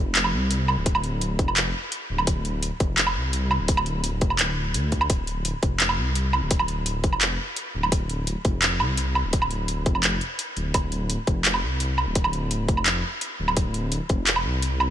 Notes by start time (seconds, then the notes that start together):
Already playing: F1
0.15 clap, closed hi-hat
0.24 low woodblock
0.33 C2
0.51 closed hi-hat
0.68 low woodblock
0.77 D1
0.86 kick, closed hi-hat
0.95 low woodblock
1.04 closed hi-hat
1.21 closed hi-hat
1.39 F1, kick, closed hi-hat
1.48 low woodblock
1.57 clap, closed hi-hat
1.92 closed hi-hat
2.09 D1
2.18 low woodblock
2.27 D1, kick, closed hi-hat
2.45 closed hi-hat
2.63 closed hi-hat
2.80 F1, kick, closed hi-hat
2.98 clap, closed hi-hat
3.07 low woodblock
3.16 C2
3.33 closed hi-hat
3.51 low woodblock
3.60 D1
3.68 kick, closed hi-hat
3.77 low woodblock
3.86 closed hi-hat
4.04 closed hi-hat
4.21 F1, kick, closed hi-hat
4.30 low woodblock
4.39 D1, clap, closed hi-hat
4.74 D2, closed hi-hat
4.92 kick, closed hi-hat
5.01 low woodblock
5.10 D1, kick, closed hi-hat
5.27 closed hi-hat
5.45 closed hi-hat
5.63 F1, kick, closed hi-hat
5.80 clap, closed hi-hat
5.89 low woodblock
5.98 C2
6.15 closed hi-hat
6.33 low woodblock
6.42 D1
6.51 kick, closed hi-hat
6.59 low woodblock
6.68 closed hi-hat
6.86 closed hi-hat
7.04 F1, kick, closed hi-hat
7.13 low woodblock
7.21 clap, closed hi-hat
7.56 closed hi-hat
7.74 D1
7.83 low woodblock
7.92 D1, kick, closed hi-hat
8.10 closed hi-hat
8.27 closed hi-hat
8.45 F1, kick, closed hi-hat
8.62 clap, closed hi-hat
8.80 C2, low woodblock
8.97 closed hi-hat
9.15 low woodblock
9.25 D1
9.33 kick, closed hi-hat
9.42 low woodblock
9.51 closed hi-hat
9.68 closed hi-hat
9.86 F1, kick, closed hi-hat
9.95 low woodblock
10.03 clap, closed hi-hat
10.21 closed hi-hat
10.39 closed hi-hat
10.56 D1, closed hi-hat
10.74 D1, kick, closed hi-hat, low woodblock
10.92 closed hi-hat
11.10 closed hi-hat
11.27 F1, kick, closed hi-hat
11.45 clap, closed hi-hat
11.54 low woodblock
11.63 C2
11.80 closed hi-hat
11.98 low woodblock
12.07 D1
12.15 kick, closed hi-hat
12.24 low woodblock
12.33 closed hi-hat
12.51 closed hi-hat
12.68 F1, kick, closed hi-hat
12.77 low woodblock
12.86 clap, closed hi-hat
13.21 closed hi-hat
13.39 D1
13.48 low woodblock
13.57 D1, kick, closed hi-hat
13.74 closed hi-hat
13.92 closed hi-hat
14.09 F1, kick, closed hi-hat
14.27 clap, closed hi-hat
14.36 low woodblock
14.45 C2
14.62 closed hi-hat
14.80 low woodblock